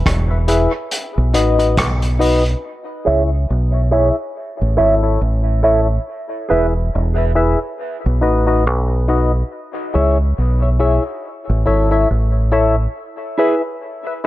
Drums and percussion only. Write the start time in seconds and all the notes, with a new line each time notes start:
0.06 kick, cross-stick, closed hi-hat
0.48 closed hi-hat
0.91 closed hi-hat
1.34 closed hi-hat
1.59 closed hi-hat
1.77 kick, cross-stick, closed hi-hat
2.02 closed hi-hat
2.21 open hi-hat
2.46 closed hi-hat